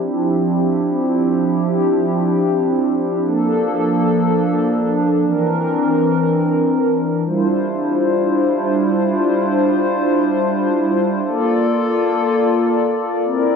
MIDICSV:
0, 0, Header, 1, 2, 480
1, 0, Start_track
1, 0, Key_signature, -1, "minor"
1, 0, Tempo, 500000
1, 13017, End_track
2, 0, Start_track
2, 0, Title_t, "Analog synth pad"
2, 0, Program_c, 0, 89
2, 0, Note_on_c, 0, 53, 84
2, 0, Note_on_c, 0, 60, 74
2, 0, Note_on_c, 0, 62, 75
2, 0, Note_on_c, 0, 64, 78
2, 0, Note_on_c, 0, 67, 89
2, 3083, Note_off_c, 0, 53, 0
2, 3083, Note_off_c, 0, 67, 0
2, 3084, Note_off_c, 0, 64, 0
2, 3085, Note_off_c, 0, 60, 0
2, 3085, Note_off_c, 0, 62, 0
2, 3119, Note_on_c, 0, 62, 77
2, 3120, Note_on_c, 0, 53, 83
2, 3120, Note_on_c, 0, 69, 91
2, 3121, Note_on_c, 0, 58, 75
2, 5022, Note_off_c, 0, 53, 0
2, 5022, Note_off_c, 0, 58, 0
2, 5022, Note_off_c, 0, 69, 0
2, 5043, Note_on_c, 0, 52, 86
2, 5043, Note_on_c, 0, 60, 74
2, 5043, Note_on_c, 0, 70, 90
2, 6923, Note_off_c, 0, 62, 0
2, 6943, Note_off_c, 0, 52, 0
2, 6944, Note_off_c, 0, 60, 0
2, 6944, Note_off_c, 0, 70, 0
2, 6963, Note_on_c, 0, 55, 85
2, 6963, Note_on_c, 0, 72, 90
2, 6964, Note_on_c, 0, 62, 78
2, 6964, Note_on_c, 0, 64, 76
2, 6964, Note_on_c, 0, 65, 78
2, 10764, Note_off_c, 0, 55, 0
2, 10765, Note_off_c, 0, 62, 0
2, 10765, Note_off_c, 0, 64, 0
2, 10765, Note_off_c, 0, 65, 0
2, 10765, Note_off_c, 0, 72, 0
2, 10799, Note_on_c, 0, 69, 78
2, 10800, Note_on_c, 0, 65, 77
2, 10800, Note_on_c, 0, 74, 91
2, 10801, Note_on_c, 0, 58, 83
2, 12702, Note_off_c, 0, 58, 0
2, 12702, Note_off_c, 0, 65, 0
2, 12702, Note_off_c, 0, 69, 0
2, 12721, Note_on_c, 0, 70, 81
2, 12722, Note_on_c, 0, 60, 86
2, 12722, Note_on_c, 0, 64, 77
2, 13017, Note_off_c, 0, 60, 0
2, 13017, Note_off_c, 0, 64, 0
2, 13017, Note_off_c, 0, 70, 0
2, 13017, Note_off_c, 0, 74, 0
2, 13017, End_track
0, 0, End_of_file